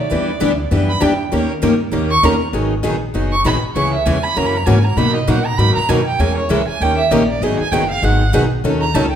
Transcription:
Already playing: violin D5
0.10 upright bass E2, steel-string acoustic guitar E3 G3 B3 D4 E4 G4 B4
0.40 upright bass D2, steel-string acoustic guitar E3 G3 B3 D4 E4 G4 B4
0.71 upright bass F#2, steel-string acoustic guitar E3 G3 B3 D4 E4 G4 B4
0.90 violin B5
1.01 upright bass E2, steel-string acoustic guitar E3 G3 B3 D4 E4 G4 B4, violin G5
1.32 upright bass D#2, steel-string acoustic guitar D#3 A#3 C#4 G4 A#4
1.62 upright bass G2, steel-string acoustic guitar D#3 A#3 C#4 G4 A#4
1.91 upright bass D#2, steel-string acoustic guitar D#3 A#3 C#4 G4 A#4
2.11 violin C#6
2.23 upright bass E2, steel-string acoustic guitar D#3 A#3 C#4 G4 A#4, violin A#5
2.53 upright bass G#1, steel-string acoustic guitar D#3 F#3 B3 D#4 G#4
2.83 upright bass A#1, steel-string acoustic guitar D#3 F#3 B3 D#4 G#4
3.14 upright bass F#1, steel-string acoustic guitar D#3 F#3 B3 D#4 G#4
3.32 violin C#6
3.44 upright bass A#1, steel-string acoustic guitar D#3 F#3 B3 D#4 G#4, violin B5
3.63 muted upright bass stroke
3.75 upright bass C#2, steel-string acoustic guitar C#3 E3 G#3 B3 C#4 E4 G#4, violin C#6
3.94 violin E5
4.06 upright bass E2, steel-string acoustic guitar C#3 E3 G#3 B3 C#4 E4 G#4, violin G#5
4.24 violin B5
4.35 upright bass F#2, steel-string acoustic guitar C#3 E3 F#3 A#3 C#4 E4 F#4 A#4, violin A#5
4.47 violin B5
4.57 violin A#5
4.66 upright bass G#2, steel-string acoustic guitar C#3 E3 F#3 A#3 C#4 E4 F#4 A#4, violin G#5
4.84 violin A#5
4.97 upright bass B2, steel-string acoustic guitar B2 D#3 F#3 A#3 B3 D#4 F#4 A#4, violin B5
5.16 violin D#5
5.27 upright bass A#2, steel-string acoustic guitar B2 D#3 F#3 A#3 B3 D#4 F#4 A#4, violin F#5
5.46 violin A#5
5.58 upright bass G#2, steel-string acoustic guitar B2 D#3 F#3 A#3 B3 D#4 F#4 A#4, violin B5
5.75 violin A#5, muted upright bass stroke
5.89 upright bass F#2, steel-string acoustic guitar B2 D#3 F#3 A#3 B3 D#4 F#4 A#4, violin G#5
6.07 violin G5
6.19 upright bass E2, steel-string acoustic guitar E3 G#3 C#4 G#4 A#4, violin G#5
6.38 violin C#5
6.49 upright bass C#2, steel-string acoustic guitar E3 G#3 C#4 G#4 A#4, violin E5
6.68 violin G#5, muted upright bass stroke
6.80 upright bass D#2, steel-string acoustic guitar D#3 A#3 C#4 G4 A#4, violin G5
6.98 violin E5
7.11 upright bass A#1, steel-string acoustic guitar D#3 A#3 C#4 G4 A#4, violin D#5
7.28 violin D5
7.41 upright bass G#1, steel-string acoustic guitar D#3 F#3 B3 D#4 G#4, violin D#5
7.59 violin G#5, muted upright bass stroke
7.72 upright bass F#1, steel-string acoustic guitar D#3 F#3 B3 D#4 G#4, violin G5
7.90 violin F5
8.03 upright bass G#1, steel-string acoustic guitar D#3 F#3 B3 D#4 G#4, violin F#5
8.33 upright bass B1, steel-string acoustic guitar D#3 F#3 B3 D#4 G#4
8.64 upright bass D#2, steel-string acoustic guitar D#3 F#3 C#4 D#4 A4
8.81 violin A#5
8.94 upright bass C#2, steel-string acoustic guitar D#3 F#3 C#4 D#4 A4, violin A5
9.11 violin G5

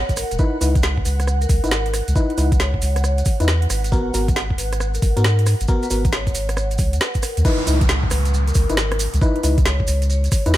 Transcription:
Already playing: vibraphone C#5, ambient pad F#5
0.09 sub bass G#1, kick, closed hi-hat, maracas
0.17 vibraphone A#4, cross-stick, open hi-hat, maracas
0.31 sub bass D#1, closed hi-hat, maracas
0.39 fm electric piano D#4 E4 B4, vibraphone B4, kick, maracas
0.61 sub bass C#2, fm electric piano D#4 E4 B4, open hi-hat, maracas
0.75 kick, closed hi-hat, maracas
0.83 snare, maracas
0.98 kick
1.05 sub bass C#2, vibraphone B4, open hi-hat, maracas
1.20 cross-stick, closed hi-hat, maracas
1.27 cross-stick, maracas
1.41 vibraphone A#4, closed hi-hat, maracas
1.49 sub bass C#2, kick, open hi-hat, maracas
1.64 sub bass G#1, fm electric piano D#4 E4 B4, closed hi-hat, maracas
1.71 vibraphone A#4, snare, maracas
1.86 closed hi-hat
1.94 cross-stick, open hi-hat, maracas
2.08 sub bass C#2, closed hi-hat, maracas
2.16 fm electric piano D#4 E4 B4, kick, maracas
2.30 vibraphone B4, closed hi-hat
2.38 sub bass C#2, fm electric piano D#4 E4 B4, open hi-hat, maracas
2.52 kick, closed hi-hat, maracas
2.60 vibraphone C#5, snare, maracas
2.74 kick
2.82 sub bass C#2, open hi-hat, maracas
2.96 cross-stick, closed hi-hat, maracas
3.04 vibraphone C#5, cross-stick, maracas
3.18 closed hi-hat, maracas
3.25 kick, open hi-hat, maracas
3.40 sub bass E2, fm electric piano D#4 E4 B4, closed hi-hat, maracas
3.48 vibraphone B4, snare, maracas
3.62 closed hi-hat
3.70 sub bass G#1, vibraphone B4, cross-stick, open hi-hat, maracas
3.84 closed hi-hat, maracas
3.92 fm electric piano B3 F#4 A#4, vibraphone B4, kick, maracas
4.14 sub bass G#1, fm electric piano B3 F#4 A#4, open hi-hat, maracas
4.28 kick, closed hi-hat, maracas
4.36 snare, maracas
4.50 kick
4.58 sub bass G#1, vibraphone B4, open hi-hat, maracas
4.73 cross-stick, closed hi-hat, maracas
4.80 cross-stick, maracas
4.94 vibraphone A#4, closed hi-hat, maracas
5.02 sub bass G#1, kick, open hi-hat, maracas
5.17 sub bass G#2, fm electric piano B3 F#4 A#4, closed hi-hat, maracas
5.24 vibraphone A#4, snare, maracas
5.39 closed hi-hat
5.46 cross-stick, open hi-hat, maracas
5.60 sub bass G#1, closed hi-hat, maracas
5.68 fm electric piano B3 F#4 A#4, kick, maracas
5.83 vibraphone B4, closed hi-hat, maracas
5.90 sub bass G#1, fm electric piano B3 F#4 A#4, open hi-hat, maracas
6.05 kick, closed hi-hat, maracas
6.12 vibraphone C#5, snare, maracas
6.27 kick, closed hi-hat, maracas
6.35 sub bass G#1, open hi-hat, maracas
6.49 cross-stick, closed hi-hat, maracas
6.57 vibraphone C#5, cross-stick, maracas
6.71 closed hi-hat, maracas
6.78 sub bass C#2, kick, open hi-hat, maracas
6.93 sub bass D#2, closed hi-hat, maracas
7.01 vibraphone B4, snare, maracas
7.14 kick, closed hi-hat, maracas
7.23 vibraphone A#4, cross-stick, open hi-hat, maracas
7.37 sub bass D#2, closed hi-hat, maracas
7.45 fm electric piano D#4 E4 B4, vibraphone B4, kick, crash, downlifter, maracas
7.67 sub bass C#2, fm electric piano D#4 E4 B4, open hi-hat, maracas
7.81 kick, closed hi-hat, maracas
7.89 snare, maracas
8.03 kick
8.10 sub bass C#2, vibraphone B4, cross-stick, open hi-hat, maracas
8.25 closed hi-hat, maracas
8.34 maracas
8.47 vibraphone A#4, closed hi-hat, maracas
8.55 sub bass C#2, kick, cross-stick, open hi-hat, maracas
8.70 sub bass G#1, fm electric piano D#4 E4 B4, closed hi-hat, maracas
8.77 vibraphone A#4, snare, maracas
8.92 cross-stick, closed hi-hat
8.99 open hi-hat, maracas
9.14 sub bass C#2, closed hi-hat, maracas
9.21 fm electric piano D#4 E4 B4, kick, maracas
9.36 vibraphone B4, closed hi-hat
9.43 sub bass C#2, fm electric piano D#4 E4 B4, open hi-hat, maracas
9.58 kick, closed hi-hat, maracas
9.66 vibraphone C#5, snare, maracas
9.80 kick
9.87 sub bass C#2, open hi-hat, maracas
10.02 closed hi-hat, maracas
10.10 vibraphone C#5, maracas
10.24 closed hi-hat, maracas
10.32 kick, cross-stick, open hi-hat, maracas
10.46 sub bass E2, fm electric piano D#4 E4 B4, closed hi-hat, maracas
10.54 vibraphone B4, snare, maracas

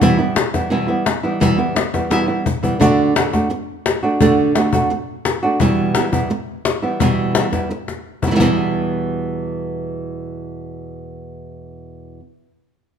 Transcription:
0.01 nylon-string guitar E2 B2 E3 G3 B3 E4, cajon bass
0.18 nylon-string guitar E3 G3 B3 E4
0.36 muted nylon-string guitar stroke, cajon slap
0.54 nylon-string guitar E3 G3 B3 E4, cajon bass, cajon slap
0.70 nylon-string guitar E2 B2 E3 G3 B3 E4
0.88 nylon-string guitar E3 G3 B3 E4
1.06 muted nylon-string guitar stroke, cajon slap
1.23 nylon-string guitar E3 G3 B3 E4
1.40 nylon-string guitar E2 B2 E3 G3 B3 E4, cajon bass
1.58 nylon-string guitar E3 G3 B3 E4
1.76 muted nylon-string guitar stroke, cajon slap
1.93 nylon-string guitar E3 G3 B3 E4, cajon bass, cajon slap
2.10 nylon-string guitar E2 B2 E3 G3 B3 E4, cajon slap
2.28 nylon-string guitar E3 G3 B3 E4
2.46 muted nylon-string guitar stroke, cajon bass
2.63 nylon-string guitar E3 G3 B3 E4, cajon bass
2.80 nylon-string guitar D3 A3 D4 F#4, cajon bass
3.16 nylon-string guitar D3 A3 D4 F#4, cajon slap
3.33 nylon-string guitar A3 D4 F#4, cajon bass, cajon slap
3.50 muted nylon-string guitar stroke, cajon slap
3.86 cajon slap
4.03 nylon-string guitar A3 D4 F#4
4.20 nylon-string guitar D3 A3 D4 F#4, cajon bass
4.55 nylon-string guitar D3 A3 D4 F#4, cajon slap
4.73 nylon-string guitar A3 D4 F#4, cajon bass
4.90 muted nylon-string guitar stroke
5.25 cajon slap
5.43 nylon-string guitar A3 D4 F#4, cajon slap
5.60 nylon-string guitar E2 B2 E3 G3 B3 E4, cajon bass
5.95 nylon-string guitar E3 G3 B3 E4, cajon slap
6.12 nylon-string guitar E3 G3 B3 E4, cajon bass
6.30 muted nylon-string guitar stroke, cajon slap
6.65 cajon slap
6.82 nylon-string guitar E3 G3 B3 E4
7.00 nylon-string guitar E2 B2 E3 G3 B3 E4, cajon bass
7.35 nylon-string guitar E3 G3 B3 E4, cajon slap
7.52 nylon-string guitar E3 G3 B3 E4, cajon bass, cajon slap
7.70 muted nylon-string guitar stroke
7.88 cajon slap
8.22 nylon-string guitar E3 G3 B3 E4, cajon bass
8.26 nylon-string guitar B2 G3 B3 E4
8.31 nylon-string guitar B2 E3 G3 B3 E4
8.35 nylon-string guitar B2 E3 G3 B3 E4
8.40 nylon-string guitar E2 B2 E3 G3 B3 E4, cajon bass

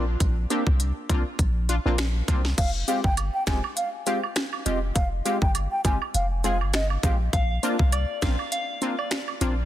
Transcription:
Already playing: sub bass A#1
0.20 sub bass A#1, kick, closed hi-hat
0.50 synth stab A#3 C4 D4 G4, closed hi-hat
0.67 sub bass C2, kick
0.80 closed hi-hat
1.09 sub bass C2, synth stab A#3 C4 D4 F4, kick, closed hi-hat
1.39 sub bass A#1, kick, closed hi-hat
1.69 synth stab D4 F4, closed hi-hat
1.85 sub bass A#1, synth stab A#3 C4 D4 F4
1.98 finger snap, cross-stick, snare, closed hi-hat
2.28 sub bass C2, synth stab A#3 C4 D4 F4, kick, closed hi-hat
2.45 snare
2.58 sub bass F1, flute F5, kick, closed hi-hat, crash
2.87 synth stab G#3 C4 F4 G4, flute F5, closed hi-hat, cabasa
3.04 sub bass G1, flute G5, kick
3.17 closed hi-hat, high woodblock
3.34 flute G5
3.47 sub bass F1, synth stab G#3 C4 F4 G4, flute G#5, finger snap, kick, snare, closed hi-hat, cabasa
3.64 high woodblock
3.77 flute F5, closed hi-hat
4.06 synth stab G#3 C4 F4 G4, flute F5, closed hi-hat, cabasa
4.23 high woodblock
4.36 finger snap, cross-stick, snare, closed hi-hat
4.53 high woodblock
4.66 sub bass F1, synth stab G#3 C4 F4 G4, flute D#5, closed hi-hat, cabasa
4.95 sub bass F1, flute F5, kick, closed hi-hat
5.25 synth stab G#3 C4 F4 G4, flute F5, closed hi-hat, cabasa
5.42 sub bass G1, flute G5, kick
5.55 closed hi-hat, high woodblock
5.72 flute G5
5.84 sub bass G1, synth stab G#3 C4 F4 G4, flute G#5, kick, closed hi-hat, cabasa
6.02 high woodblock
6.14 sub bass F1, flute F5, closed hi-hat
6.44 synth stab G#3 C4 F4 G#4, flute F5, closed hi-hat, cabasa
6.61 sub bass G1, high woodblock
6.74 flute D#5, finger snap, cross-stick, snare, closed hi-hat
6.90 high woodblock
7.03 sub bass A#1, synth stab G#3 C4 F4 G4, flute F5, kick, closed hi-hat, cabasa
7.33 sub bass A#1, synth bell F5, kick, closed hi-hat
7.63 synth stab A#3 C4 D4 F4, closed hi-hat, cabasa
7.79 sub bass C2, kick
7.92 synth bell D5, closed hi-hat, high woodblock
8.22 sub bass A#1, synth stab A#3 C4 D4 F4, synth bell F5, finger snap, kick, snare, closed hi-hat, cabasa
8.39 high woodblock
8.52 synth bell F5, closed hi-hat
8.82 synth stab A#3 C4 D4 F4, closed hi-hat, cabasa
8.98 synth bell D5, high woodblock
9.11 finger snap, cross-stick, snare, closed hi-hat
9.28 high woodblock
9.41 sub bass A#1, synth stab A#3 C4 D4 F4, closed hi-hat, cabasa

